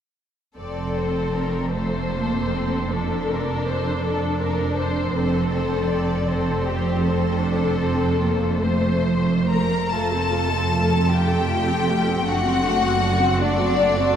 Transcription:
0.58 5.11 F1 soft
0.58 5.11 F2 soft
0.58 1.71 C4 soft
0.58 1.71 A4 soft
0.58 0.96 D5 soft
0.98 1.37 C5 soft
1.36 1.75 A#4 soft
1.74 2.14 A3 soft
1.74 2.88 A4 soft
1.74 2.91 C5 soft
2.14 2.53 A#3 soft
2.54 2.92 C4 soft
2.90 5.12 D4 soft
2.90 5.10 A4 soft
2.90 3.30 A4 soft
3.31 3.68 A#4 soft
3.67 4.04 C5 soft
4.04 4.41 A4 soft
4.41 4.77 A#4 soft
4.78 5.14 C5 soft
5.14 9.67 F1 soft
5.14 9.67 F2 soft
5.14 6.24 C4 soft
5.14 6.25 A4 soft
5.14 5.50 C5 soft
5.51 5.88 C5 soft
5.89 6.26 D5 soft
6.26 7.38 C4 soft
6.26 6.63 A4 soft
6.26 8.61 C5 soft
6.65 7.02 G4 soft
7.02 8.62 A4 soft
7.41 7.80 D4 soft
7.81 8.20 C4 soft
8.21 8.62 A#3 soft
8.61 9.69 A3 soft
8.61 9.49 C5 soft
8.61 9.48 C5 soft
9.50 9.90 A#4 soft
9.50 9.90 A#5 soft
9.92 12.22 F1 soft
9.92 12.22 F2 soft
9.92 10.11 A3 soft
9.92 10.11 F4 soft
9.92 11.11 A4 soft
9.92 11.11 A5 soft
10.13 10.33 C4 soft
10.13 10.33 A4 soft
10.32 10.53 A3 soft
10.32 10.52 F4 soft
10.52 10.72 C4 soft
10.52 10.73 A4 soft
10.73 10.91 A3 soft
10.73 10.91 F4 soft
10.92 11.12 C4 soft
10.92 11.12 A4 soft
11.10 11.31 A3 soft
11.10 11.30 F4 soft
11.10 12.26 G4 soft
11.10 12.28 G5 soft
11.29 11.49 C4 soft
11.29 11.49 A4 soft
11.49 11.67 A3 soft
11.49 11.67 F4 soft
11.68 11.87 C4 soft
11.68 11.88 A4 soft
11.87 12.07 A3 soft
11.87 12.07 F4 soft
12.06 12.26 C4 soft
12.06 12.26 A4 soft
12.26 14.16 F#1 soft
12.26 14.16 F#2 soft
12.26 12.44 A3 soft
12.26 12.44 D4 soft
12.26 13.39 F#4 soft
12.26 13.42 F#5 medium
12.44 12.64 C4 soft
12.44 12.64 F#4 soft
12.63 12.83 A3 soft
12.63 12.83 D4 soft
12.82 13.02 C4 soft
12.82 13.03 F#4 soft
13.01 13.20 A3 soft
13.01 13.20 D4 soft
13.21 13.41 C4 soft
13.21 13.41 F#4 soft
13.40 13.59 A3 soft
13.40 13.60 D4 soft
13.40 14.16 D4 medium
13.40 14.15 D5 medium
13.60 13.79 C4 soft
13.60 13.79 F#4 soft
13.79 13.97 A3 soft
13.79 13.96 D4 soft
13.97 14.16 C4 soft
13.97 14.16 F#4 soft

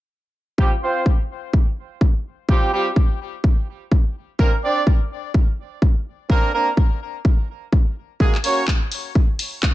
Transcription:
0.58 0.73 G3 medium
0.58 0.73 C4 medium
0.58 0.73 F4 medium
0.58 0.73 G4 medium
0.58 kick loud
0.82 1.03 C4 medium
0.82 1.03 F4 medium
0.82 1.03 C5 medium
1.06 kick medium
1.53 kick loud
2.01 kick medium
2.49 2.69 G3 medium
2.49 2.69 C4 medium
2.49 2.69 F4 medium
2.49 2.69 G4 medium
2.49 kick loud
2.73 2.88 G3 medium
2.73 2.88 C4 medium
2.73 2.88 F4 medium
2.73 2.88 G4 medium
2.96 kick loud
3.44 kick loud
3.92 kick loud
4.39 4.54 A#3 medium
4.39 4.54 C4 medium
4.39 4.54 D4 medium
4.39 4.54 A#4 loud
4.39 kick loud
4.63 4.84 C4 medium
4.63 4.84 D4 medium
4.63 4.84 D5 medium
4.87 kick loud
5.34 kick loud
5.82 kick loud
6.30 6.50 A#3 medium
6.30 6.50 C4 medium
6.30 6.50 D4 medium
6.30 6.50 A#4 medium
6.30 kick loud
6.54 6.69 A#3 medium
6.54 6.69 C4 medium
6.54 6.69 D4 medium
6.54 6.69 A#4 medium
6.77 kick loud
7.25 kick loud
7.72 kick loud
8.20 8.35 G#3 medium
8.20 8.35 A#3 medium
8.20 8.35 F#4 medium
8.20 8.35 G#4 loud
8.20 kick loud
8.35 clap soft
8.44 8.65 A#3 medium
8.44 8.65 C#4 medium
8.44 8.65 F#4 medium
8.44 8.65 C#5 medium
8.44 open hi-hat medium
8.68 kick loud
8.68 clap loud
8.92 open hi-hat medium
9.15 kick loud
9.39 open hi-hat loud
9.63 kick loud
9.63 clap loud

